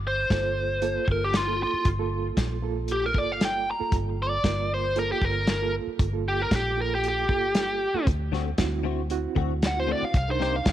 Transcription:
Already playing: G1
0.07 C5
0.30 G1 A#3 F4 A4, kick, snare, closed hi-hat
0.82 A#3 F4 A4, closed hi-hat
1.08 G1 A#4, kick
1.24 G4
1.34 F4, snare, closed hi-hat
1.47 A#3 F4 A4
1.63 F4
1.73 muted fingered electric bass stroke
1.85 G1, kick, closed hi-hat
1.99 A#3 F4 A4
2.37 A#1, kick, snare, closed hi-hat
2.63 A#3 F4 A4
2.88 closed hi-hat
2.92 G4
3.06 A#4
3.14 G1 A#3 F4 A4, kick
3.18 D5
3.32 F5
3.41 G5, snare, closed hi-hat
3.71 A#5
3.80 A#3 F4 A4, muted fingered electric bass stroke
3.92 G1, kick, closed hi-hat
4.22 D5
4.44 G1 A#3 F4 A#4, kick, snare, closed hi-hat
4.74 C5
4.96 A#3 F4 A4 A#4, closed hi-hat
5.12 G4
5.22 G1 A#4, kick
5.47 A#4, snare, closed hi-hat
5.61 A#3 F4 A4
5.87 muted fingered electric bass stroke
5.99 G1, kick, closed hi-hat
6.12 A#3 F4 A4
6.28 G4
6.42 A#4
6.51 A#1, kick, snare, closed hi-hat
6.56 G4
6.77 A#3 F4 A4
6.82 A#4
6.95 G4
7.04 closed hi-hat
7.08 G4
7.29 G1 A#3 F4 A4, kick
7.55 snare, closed hi-hat
7.94 A#3 F4 A4, muted fingered electric bass stroke
8.07 D2, kick, closed hi-hat
8.32 D3 A3 C4 F#4, snare
8.58 D2 C4 E4 F#4, kick, snare, closed hi-hat
8.84 D3 A3 C4 F#4
9.10 C4 E4 F#4, closed hi-hat
9.35 D2 D3 A3 C4 F#4, kick
9.62 snare, closed hi-hat
9.67 F#5
9.76 C4 E4 F#4 C5
9.87 D3 A3 C4 F#4
9.92 D5
10.02 F5, muted fingered electric bass stroke
10.14 C2 F5, kick, closed hi-hat
10.28 D4 D#4 A#4 C5
10.40 C3 A#3 D#4 G4 C5, snare
10.56 F5
10.66 D#2, kick, snare, closed hi-hat

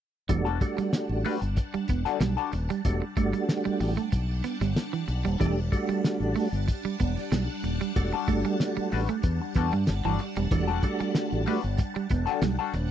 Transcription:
0.29 E1 E3 G3 A3 D4 F#4 F#5 A5, muted hollow-body jazz guitar stroke, kick, closed hi-hat
0.45 G3 D4 F#4 A4, closed hi-hat
0.61 G3 A3 D4 F#4, muted hollow-body jazz guitar stroke, muted clean electric guitar stroke, kick, closed hi-hat
0.77 G3, muted hollow-body jazz guitar stroke, muted fingered electric bass stroke, closed hi-hat
0.93 muted hollow-body jazz guitar stroke, snare, closed hi-hat
1.09 A1
1.25 G3 A3 D4 F#4 B4, open hi-hat
1.41 G1, muted hollow-body jazz guitar stroke, closed hi-hat
1.56 muted hollow-body jazz guitar stroke, muted clean electric guitar stroke, kick, closed hi-hat
1.74 G3, muted hollow-body jazz guitar stroke, muted fingered electric bass stroke, closed hi-hat
1.88 E1 B3, kick, closed hi-hat
2.05 G3 D4 F#4 A4, snare, closed hi-hat
2.20 B1 G3, muted hollow-body jazz guitar stroke, snare, closed hi-hat
2.37 G3 D4 F#4 A4, closed hi-hat
2.52 D#1, muted hollow-body jazz guitar stroke, muted clean electric guitar stroke, closed hi-hat
2.69 G3, muted hollow-body jazz guitar stroke, closed hi-hat
2.85 E1 G3 A3 D4 F#4, kick, closed hi-hat
3.02 muted clean electric guitar stroke
3.17 G1 G3 A3 D4 F#4, kick, closed hi-hat
3.33 G3, closed hi-hat
3.49 snare, closed hi-hat
3.65 G3, muted fingered electric bass stroke, closed hi-hat
3.80 A1, muted clean electric guitar stroke, open hi-hat
3.97 A3, closed hi-hat
4.12 B1, muted clean electric guitar stroke, kick, closed hi-hat
4.44 B3, snare, closed hi-hat
4.61 G1 G3, snare, closed hi-hat
4.76 snare, closed hi-hat
4.93 E3, closed hi-hat
5.08 B1, muted clean electric guitar stroke, closed hi-hat
5.25 D#1 G3, closed hi-hat
5.40 E1 E3 G3 A3 D4 G4, kick, closed hi-hat
5.58 closed hi-hat
5.72 G3 A3 D4 F#4, muted clean electric guitar stroke, kick, closed hi-hat
5.89 G3, muted fingered electric bass stroke, closed hi-hat
6.04 snare, closed hi-hat
6.20 A1, closed hi-hat
6.36 A3, open hi-hat
6.52 G1, closed hi-hat
6.68 muted clean electric guitar stroke, kick, closed hi-hat
6.85 G3, muted fingered electric bass stroke, closed hi-hat
7.00 E1 B3, kick, closed hi-hat
7.17 snare, closed hi-hat
7.32 B1 G3, snare, closed hi-hat
7.50 closed hi-hat
7.63 D#1, muted clean electric guitar stroke, closed hi-hat
7.81 G3, closed hi-hat
7.96 E1 G3 A3 D4 F#4, muted hollow-body jazz guitar stroke, kick, closed hi-hat
8.13 G3 D4 F#4 A4, muted clean electric guitar stroke
8.28 G1 G3 A3 D4 F#4, kick, closed hi-hat
8.45 G3, muted hollow-body jazz guitar stroke, closed hi-hat
8.60 muted hollow-body jazz guitar stroke, snare, closed hi-hat
8.77 G3, muted fingered electric bass stroke, closed hi-hat
8.92 A1 G3 D4 F#4 B4, muted clean electric guitar stroke, open hi-hat
9.09 A3, muted hollow-body jazz guitar stroke, closed hi-hat
9.23 E2, muted clean electric guitar stroke, kick, closed hi-hat
9.41 muted hollow-body jazz guitar stroke
9.54 E2 G3 B3 D4 F#4 A4, kick, snare, closed hi-hat
9.72 G2 G3, muted hollow-body jazz guitar stroke, closed hi-hat
9.87 G1, muted hollow-body jazz guitar stroke, snare, closed hi-hat
10.04 G1 E3 G3 D4 F#4 A4, closed hi-hat
10.19 muted clean electric guitar stroke, muted hollow-body jazz guitar stroke, closed hi-hat
10.36 E1 G3, muted hollow-body jazz guitar stroke, closed hi-hat
10.51 E1 E3 G3 A3 D4 F#4, muted hollow-body jazz guitar stroke, kick, closed hi-hat
10.67 G3 D4 F#4 A4, closed hi-hat
10.83 G3 A3 D4 F#4, muted hollow-body jazz guitar stroke, muted clean electric guitar stroke, kick, closed hi-hat
11.00 G3, muted hollow-body jazz guitar stroke, muted fingered electric bass stroke, closed hi-hat
11.14 muted hollow-body jazz guitar stroke, snare, closed hi-hat
11.32 A1, closed hi-hat
11.46 G3 A3 D4 F#4 B4, open hi-hat
11.63 G1, muted hollow-body jazz guitar stroke, closed hi-hat
11.77 muted hollow-body jazz guitar stroke, muted clean electric guitar stroke, kick, closed hi-hat
11.94 G3, muted hollow-body jazz guitar stroke, muted fingered electric bass stroke, closed hi-hat
12.10 E1 B3, kick, closed hi-hat
12.26 G3 D4 F#4 A4, snare, closed hi-hat
12.42 B1 G3, muted hollow-body jazz guitar stroke, snare, closed hi-hat
12.59 G3 D4 F#4 A4
12.73 D#1, muted hollow-body jazz guitar stroke, muted clean electric guitar stroke, closed hi-hat

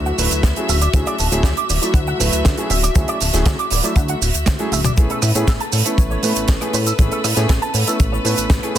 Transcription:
Already playing: D2 F#3 A3 E4 F#4 E5
0.06 F#5, shaker
0.18 D1 F#3 A3 E4 B4, open hi-hat, shaker
0.31 D2, closed hi-hat, shaker
0.43 D2, kick, snare, closed hi-hat, shaker
0.56 F#3 A3 C#4 E4 G#4, closed hi-hat, shaker
0.69 D1 E5, open hi-hat, shaker
0.81 D5, closed hi-hat, shaker
0.93 D2 F#3 A3 C#4 E4 G#4, kick, closed hi-hat, shaker
1.06 D5, closed hi-hat, shaker
1.18 D1 A5, open hi-hat, shaker
1.32 D1 F#3 A3 C#4 E4 G#4, closed hi-hat, shaker
1.43 D2 D5, kick, snare, closed hi-hat, shaker
1.57 D6, closed hi-hat, shaker
1.69 D1 D5, open hi-hat, shaker
1.82 F#3 A3 E4 D5, closed hi-hat, shaker
1.94 D2 F#5, kick, closed hi-hat, shaker
2.07 F#5, shaker
2.19 D1 F#3 A3 E4 B4, open hi-hat, shaker
2.33 D2, closed hi-hat, shaker
2.45 D2, kick, snare, closed hi-hat, shaker
2.57 F#3 A3 C#4 E4 G#4, closed hi-hat, shaker
2.70 D1 E5, open hi-hat, shaker
2.83 D5, closed hi-hat, shaker
2.95 D2 F#3 A3 C#4 E4 G#4, kick, closed hi-hat, shaker
3.08 D5, closed hi-hat, shaker
3.21 D1 A5, open hi-hat, shaker
3.33 D1 F#3 A3 C#4 E4 G#4, snare, closed hi-hat, shaker
3.46 D2 D5, kick, snare, closed hi-hat, shaker
3.59 D6, closed hi-hat, shaker
3.70 D1 D5, open hi-hat, shaker
3.83 F#3 A3 E4 D5, closed hi-hat, shaker
3.96 D2 F#5, kick, closed hi-hat, shaker
4.08 F#5, closed hi-hat, shaker
4.22 D1, open hi-hat, shaker
4.34 D2, closed hi-hat, shaker
4.46 D2, kick, snare, closed hi-hat, high tom, shaker
4.59 F#3 A3 C#4 E4 G#4, closed hi-hat, high tom, shaker
4.72 D1 E5, open hi-hat, shaker
4.84 D5, closed hi-hat, mid tom, shaker
4.97 A1 A3 B3 C#4 E4 G#4 A4 B4, kick, closed hi-hat, shaker
5.10 A4, closed hi-hat, shaker
5.22 A2 E5, cross-stick, open hi-hat, shaker
5.35 A2 A3 B3 C#4 E4 G#4, closed hi-hat, shaker
5.48 A1 A4, kick, snare, closed hi-hat, shaker
5.60 A5, closed hi-hat, shaker
5.72 A2 A4, open hi-hat, shaker
5.85 A3 B3 C#4 E4 A4, closed hi-hat, shaker
5.98 A1 C#5, kick, closed hi-hat, shaker
6.11 C#5, shaker
6.23 A2 A3 B3 C#4 E4 B4, open hi-hat, shaker
6.35 A1, closed hi-hat, shaker
6.48 A1, kick, snare, closed hi-hat, shaker
6.61 A3 B3 C#4 E4 G#4, cross-stick, closed hi-hat, shaker
6.73 A2 B4, open hi-hat, shaker
6.86 A4, closed hi-hat, shaker
6.98 A1 A3 B3 C#4 E4 G#4, kick, closed hi-hat, shaker
7.12 A4, closed hi-hat, shaker
7.24 A2 E5, cross-stick, open hi-hat, shaker
7.36 A2 A3 B3 C#4 E4 G#4, snare, closed hi-hat, shaker
7.49 A1 A4, kick, snare, closed hi-hat, shaker
7.62 A5, closed hi-hat, shaker
7.74 A2 A4, open hi-hat, shaker
7.87 A3 B3 C#4 E4 A4, closed hi-hat, shaker
8.00 A1 C#5, kick, closed hi-hat, shaker
8.12 C#5, shaker
8.24 A2 A3 B3 C#4 E4 B4, open hi-hat, shaker
8.37 A1, closed hi-hat, shaker
8.50 A1, kick, snare, closed hi-hat, shaker
8.62 A3 B3 C#4 E4 G#4, cross-stick, closed hi-hat, shaker
8.75 A2 B4

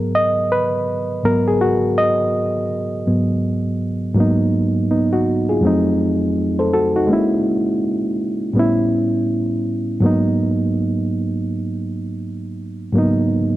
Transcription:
Already playing: G#2 F#3 B3 G#4 A#4
0.15 D#5
0.52 B4
1.24 G#2 F#3 B3 A#4
1.48 G#4
1.61 F#4
1.98 D#5
3.07 G#2 F#3 B3
4.14 G#2 F#3 A#3
4.19 B3 D#4
4.91 B3 D#4
5.13 D#4 F#4
5.49 F4 G#4
5.61 F2 F#3 A3
5.65 C4 D#4
6.59 A4 C5
6.73 F#4 A4
6.96 D#4 F#4
7.07 G#3 A#3 C#4
7.13 E4
8.53 A2 G3 B3
8.58 C#4 E4
10.00 G#2 F#3 A#3
10.05 B3 D#4
12.92 G#2 F#3 A#3
12.97 B3 D#4

